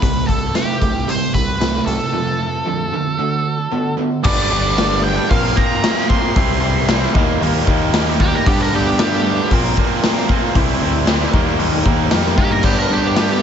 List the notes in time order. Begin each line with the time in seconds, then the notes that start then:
Already playing: B4
0.02 C2 C3 G3 C4 E4 G4, kick, closed hi-hat
0.27 C2 G3 C4 E4 G4 A4, kick, closed hi-hat
0.55 C3 G3 A3 C4 E4 G4, snare, closed hi-hat
0.81 C2 C3 G3 A3 C4, kick, closed hi-hat
0.85 E4 G4
0.96 C4 E4 G4
1.07 C3 G3 C5, closed hi-hat
1.34 C2 G3 C4 E4 G4 B4, kick, closed hi-hat
1.47 C4 E4 G4
1.59 C3 G3 A3 C4 E4 G4, snare, closed hi-hat
1.85 C2 C3 G3 A3 C4 E4 G4 A4, closed hi-hat
1.98 C4 E4 G4
2.12 F2 C3 F3 C4 F4 A4
2.38 F3 C4 F4 A4
2.64 F2 D3 F3 C4 F4 A4
2.88 F3 C4 F4 A4
2.92 F2 D3
3.03 C4 F4 A4
3.17 D3 A3 D4 F#4 A4
3.43 A3 D4 F#4 A4
3.57 D4 F#4 A4
3.71 D3 A3 B3 D4 F#4 A4
3.97 D3 A3 B3 D4 F#4 A4
4.10 D4 F#4 A4
4.22 G1 G2 D3 G3 B3 D4 G4 B4 D5, kick, crash
4.26 B3
4.48 G1 G3 B3 D4 G4 B4
4.52 G3 D4
4.62 G3 D4 G4 B4
4.76 G2 D3 G3 B3 D4 G4 B4, snare, open hi-hat
5.03 G3 B3 D4 B4 G5
5.28 A#1 A#2 F3 A#3 C4 F4 A#4 F5, kick, open hi-hat
5.43 C4 F4 A#4
5.55 A#2 F3 A#3 C4 F4 A#4 A#5, kick
5.82 A#2 F3 A#3 C4 F4 A#4, snare, open hi-hat
5.96 C4 F4 A#4
6.09 F3 A#3 C4 F4 A#4 C6, kick
6.21 C4 F4 A#4
6.35 C2 C3 E3 G3 C4 E4 G4 C5, kick, open hi-hat
6.60 C2 G3 C4 E4 C5
6.64 G4
6.77 C4 E4 G4
6.88 C3 E3 G3 C4 E4 G4 C5, snare, open hi-hat
7.13 D#2 D#3 G3 A#3 D#4 G4 A#4, kick
7.41 D#2 D#3 G3 A#3 D#4, open hi-hat
7.54 A#3 D#4 G4
7.66 D#2 D#3 G3 A#3 D#4 G4 A#4, kick
7.93 D#3 G3 A#3 D#4 G4 A#4, snare, open hi-hat
8.05 A#3 D#4 G4
8.19 G3 A#3 D#4 G4, kick
8.23 G3
8.31 A#3 D#4 G4
8.35 A#4
8.46 G2 D3 G3 B3 D4 G4 B4, kick, open hi-hat
8.61 A#4
8.71 G2 G3 B3 D4 B4
8.75 G4
8.85 G3 B3 D4 G4
8.97 G2 D3 G3 B3 D4 G4 B4, snare, open hi-hat
9.11 G3 B3 D4 G4
9.23 B3 D4 B4
9.27 G3
9.50 A#1 A#2 F3 A#3 C4 F4 A#4, kick, open hi-hat
9.62 C4 F4 A#4
9.76 A#2 F3 A#3 C4 F4 A#4, kick
9.80 A#4
10.03 A#2 F3 A#3 C4 F4 A#4, snare, open hi-hat
10.16 C4 F4 A#4
10.28 F3 A#3 C4 F4 A#4, kick
10.40 C4 F4 A#4
10.54 C2 C3 E3 G3 C4 E4 G4 C5, kick, open hi-hat
10.79 D2 G3 C4 E4 G4 C5
10.84 G3
10.93 C4 E4 G4
11.05 C3 E3 G3 C4 E4 G4, snare, open hi-hat
11.10 C5
11.21 C4 E4 G4
11.32 D#2 D#3 G3 A#3 D#4 G4 A#4, kick
11.58 D#2 D#3 G3 A#3 D#4, open hi-hat
11.74 A#3 D#4 G4
11.84 D#2 D#3 G3 A#3 D#4 G4 A#4, kick
12.11 F2 D#3 G3 A#3 D#4 G4 A#4, snare, open hi-hat
12.37 G2 G3 A#3 D#4 G4, kick
12.49 A#3 D#4 G4 A#4
12.63 G2 D3 G3 B3 D4 G4 B4, kick, crash
12.78 A#4
12.88 G2 G3 B3 D4 B4
12.92 G4
13.03 G3 B3 D4 G4
13.14 G2 D3 G3 B3 D4 G4, snare, open hi-hat
13.19 B4
13.30 G3 B3 D4 G4